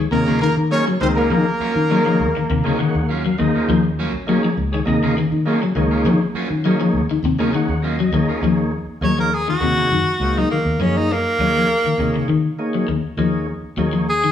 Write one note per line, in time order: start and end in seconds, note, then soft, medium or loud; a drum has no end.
0.11 0.46 D#2 loud
0.11 0.22 C3 medium
0.11 0.41 A#3 medium
0.11 0.41 D#4 medium
0.11 0.41 G#4 medium
0.11 0.40 A#4 loud
0.11 0.41 C#5 medium
0.11 muted clean electric guitar stroke soft
0.28 0.36 C#3 medium
0.28 0.41 F#3 medium
0.28 0.41 A#3 medium
0.28 0.42 C#4 medium
0.28 0.42 F4 medium
0.41 0.60 D#3 medium
0.41 0.57 A#3 medium
0.41 0.55 A#4 loud
0.41 muted clean electric guitar stroke soft
0.57 0.80 D#3 medium
0.70 0.87 F#3 medium
0.70 0.86 A#3 medium
0.70 0.86 C#4 medium
0.70 0.86 D#4 medium
0.70 0.86 F4 medium
0.70 0.87 G#4 medium
0.70 0.87 C#5 medium
0.70 0.85 C#5 loud
0.87 0.96 F#3 medium
0.87 muted clean electric guitar stroke soft
1.00 1.32 C#2 medium
1.00 1.20 D#3 medium
1.00 1.45 A#3 medium
1.00 1.10 C4 medium
1.00 1.45 D#4 medium
1.00 1.45 G#4 medium
1.00 1.46 A#4 medium
1.00 1.08 C5 loud
1.00 muted clean electric guitar stroke soft
1.16 3.35 A#3 medium
1.16 1.35 A#3 medium
1.16 1.34 C#4 medium
1.16 1.34 F4 medium
1.16 3.34 A#4 loud
1.30 1.42 D#3 loud
1.30 1.50 F3 loud
1.46 muted clean electric guitar stroke soft
1.60 1.76 F#3 medium
1.60 1.76 A#3 medium
1.60 1.75 C#4 medium
1.60 1.75 F4 medium
1.60 muted fingered electric bass stroke soft
1.75 2.21 D#3 medium
1.75 muted clean electric guitar stroke soft
1.90 2.06 F#3 medium
1.90 2.00 F#3 medium
1.90 2.27 A#3 medium
1.90 2.05 A#3 medium
1.90 2.05 C#4 medium
1.90 2.27 D#4 medium
1.90 2.05 F4 medium
1.90 2.27 G#4 medium
1.90 2.27 C#5 loud
2.06 2.24 F3 medium
2.06 muted clean electric guitar stroke medium
2.20 2.32 D#2 medium
2.37 2.45 D#3 medium
2.37 muted clean electric guitar stroke soft
2.50 2.62 D#2 loud
2.50 2.60 C3 medium
2.50 muted clean electric guitar stroke soft
2.64 2.75 C#3 medium
2.64 2.79 F#3 medium
2.64 3.01 A#3 loud
2.64 2.79 A#3 medium
2.64 2.79 C#4 medium
2.64 3.01 D#4 medium
2.64 2.79 F4 medium
2.64 3.01 G#4 medium
2.64 3.01 C#5 loud
2.79 2.98 D#3 medium
2.79 3.07 F#5 medium
2.79 muted fingered electric bass stroke soft
2.79 muted clean electric guitar stroke soft
2.95 3.29 D#2 medium
3.09 3.25 F#3 medium
3.09 3.24 C#4 medium
3.09 3.24 F4 medium
3.09 3.37 F5 medium
3.25 3.34 F#3 medium
3.25 muted clean electric guitar stroke medium
3.38 3.51 D#2 medium
3.38 3.58 D#3 medium
3.38 3.83 A#3 medium
3.38 3.83 D#4 medium
3.38 3.83 G#4 medium
3.38 3.83 C5 medium
3.38 3.66 D#5 medium
3.38 muted clean electric guitar stroke soft
3.55 3.73 A#3 medium
3.55 3.72 C#4 medium
3.55 3.72 F4 medium
3.68 4.14 D#2 medium
3.68 3.87 F3 medium
3.85 muted clean electric guitar stroke soft
3.99 4.14 F#3 loud
3.99 4.14 A#3 medium
3.99 4.13 C#4 loud
3.99 4.13 F4 loud
4.14 4.37 A#1 medium
4.14 muted clean electric guitar stroke soft
4.27 4.38 F#3 medium
4.27 4.50 A#3 loud
4.27 4.44 A#3 medium
4.27 4.43 C#4 medium
4.27 4.50 D#4 medium
4.27 4.50 G#4 medium
4.27 4.50 C#5 loud
4.27 muted clean electric guitar stroke medium
4.45 4.62 F3 medium
4.45 muted clean electric guitar stroke soft
4.57 4.80 C#2 medium
4.72 4.83 D#3 medium
4.72 4.80 G#4 loud
4.72 4.80 C#5 loud
4.72 muted clean electric guitar stroke medium
4.85 5.21 D#2 loud
4.85 4.98 C3 medium
4.85 5.15 A#3 medium
4.85 5.15 D#4 medium
4.85 5.16 G#4 medium
4.85 5.16 D#5 loud
4.85 muted clean electric guitar stroke soft
5.03 5.12 C#3 medium
5.03 5.16 A#3 medium
5.03 5.16 C#4 medium
5.03 5.16 F4 medium
5.17 5.36 D#3 medium
5.17 muted clean electric guitar stroke medium
5.32 5.55 D#3 medium
5.45 5.62 F#3 medium
5.45 5.61 A#3 medium
5.45 5.62 C#4 medium
5.45 5.61 D#4 medium
5.45 5.61 F4 medium
5.45 5.61 G#4 medium
5.45 5.61 C#5 loud
5.62 5.71 F#3 medium
5.62 muted clean electric guitar stroke medium
5.75 6.06 C#2 medium
5.75 5.94 D#3 medium
5.75 6.20 A#3 loud
5.75 6.20 D#4 medium
5.75 6.20 G#4 medium
5.75 6.20 C#5 loud
5.75 muted clean electric guitar stroke soft
5.91 6.09 A#3 soft
5.91 6.09 C#4 medium
5.91 6.09 F4 medium
6.04 6.17 D#3 loud
6.04 6.24 F3 loud
6.21 muted clean electric guitar stroke medium
6.34 6.51 F#3 medium
6.34 6.50 A#3 medium
6.34 6.50 C#4 medium
6.34 6.49 F4 loud
6.34 muted fingered electric bass stroke soft
6.50 6.95 D#3 medium
6.50 muted clean electric guitar stroke soft
6.64 6.81 F#3 medium
6.64 6.75 F#3 medium
6.64 7.01 A#3 medium
6.64 6.80 A#3 medium
6.64 6.81 C#4 medium
6.64 7.01 D#4 medium
6.64 7.01 G#4 medium
6.64 7.02 C#5 medium
6.64 muted clean electric guitar stroke medium
6.81 6.99 F3 medium
6.81 muted clean electric guitar stroke medium
6.93 7.06 D#2 medium
7.10 7.19 D#3 medium
7.10 muted clean electric guitar stroke medium
7.23 7.35 D#2 loud
7.23 7.34 C3 medium
7.23 muted clean electric guitar stroke medium
7.39 7.49 C#3 medium
7.39 7.53 F#3 medium
7.39 7.75 A#3 loud
7.39 7.53 A#3 medium
7.39 7.53 C#4 medium
7.39 7.75 D#4 medium
7.39 7.53 F4 medium
7.39 7.75 G#4 medium
7.39 7.75 C#5 loud
7.52 7.72 D#3 medium
7.52 7.81 F#5 medium
7.52 muted fingered electric bass stroke soft
7.52 muted clean electric guitar stroke soft
7.68 8.02 D#2 medium
7.82 7.99 F#3 medium
7.82 7.98 A#3 medium
7.82 7.98 C#4 medium
7.82 7.97 F4 medium
7.82 8.38 D#5 medium
7.99 8.08 F#3 medium
7.99 muted clean electric guitar stroke medium
8.12 8.24 D#2 medium
8.12 8.32 D#3 medium
8.12 8.41 A#3 medium
8.12 8.41 D#4 medium
8.12 8.41 G#4 medium
8.12 8.41 C#5 loud
8.12 muted clean electric guitar stroke soft
8.29 8.44 A#3 medium
8.29 8.43 C#4 medium
8.29 8.43 F4 medium
8.42 8.77 D#2 medium
8.42 8.62 F3 medium
8.42 8.71 A#3 medium
8.42 8.71 D#4 medium
8.42 8.72 G#4 medium
8.42 8.72 C#5 medium
8.87 muted fingered electric bass stroke soft
9.01 9.47 D#2 medium
9.01 9.13 F#3 medium
9.01 9.31 A#3 medium
9.01 9.31 D#4 medium
9.01 9.31 G#4 medium
9.01 9.31 C#5 medium
9.01 9.18 C#5 medium
9.19 9.36 F3 medium
9.19 9.35 A#4 medium
9.34 9.47 G#4 medium
9.48 9.56 D#3 medium
9.48 10.40 F#4 medium
9.60 9.84 D#2 medium
9.60 9.72 C3 medium
9.60 9.90 A#3 medium
9.60 9.90 D#4 medium
9.60 9.90 G#4 medium
9.60 9.90 C#5 medium
9.78 9.86 C#3 medium
9.91 10.03 F#2 medium
9.91 10.10 D#3 medium
10.20 10.43 C#2 loud
10.20 10.50 A#3 medium
10.20 10.50 D#4 medium
10.20 10.50 G#4 medium
10.20 10.50 C5 medium
10.37 10.46 F#3 medium
10.37 10.50 D#4 medium
10.51 10.69 D#3 medium
10.51 10.83 A#3 medium
10.65 10.76 D#2 medium
10.79 11.25 F#2 medium
10.79 10.99 F3 medium
10.79 11.09 A#3 medium
10.79 10.99 C#4 medium
10.79 11.09 D#4 medium
10.79 11.09 G#4 medium
10.79 11.09 C#5 medium
10.97 11.14 D#4 medium
11.12 12.26 A#3 loud
11.39 11.62 D#2 medium
11.39 11.50 F#3 medium
11.39 11.69 A#3 medium
11.39 11.69 D#4 medium
11.39 11.69 G#4 medium
11.39 11.69 C#5 medium
11.56 11.74 F3 medium
11.84 11.94 D#3 medium
11.84 muted fingered electric bass stroke soft
11.98 12.21 D#2 medium
11.98 12.09 C3 medium
11.98 12.28 A#3 medium
11.98 12.28 D#4 medium
11.98 12.28 G#4 medium
11.98 12.28 C#5 medium
12.16 12.24 C#3 medium
12.28 12.51 D#3 medium
12.28 12.47 D#3 medium
12.59 12.87 A#3 medium
12.59 12.87 D#4 medium
12.59 12.88 G#4 medium
12.59 12.88 C#5 loud
12.74 12.83 F#3 medium
12.88 13.00 D#2 medium
12.88 13.06 D#3 medium
13.17 13.52 D#2 medium
13.17 13.36 F3 medium
13.17 13.47 A#3 medium
13.17 13.47 D#4 medium
13.17 13.47 G#4 medium
13.17 13.47 C#5 medium
13.63 muted fingered electric bass stroke soft
13.77 14.22 D#2 medium
13.77 13.87 F#3 medium
13.77 14.07 A#3 medium
13.77 14.07 D#4 medium
13.77 14.07 G#4 medium
13.77 14.07 C#5 loud
13.93 14.11 F3 medium
14.09 14.32 G#4 medium
14.24 14.32 D#3 medium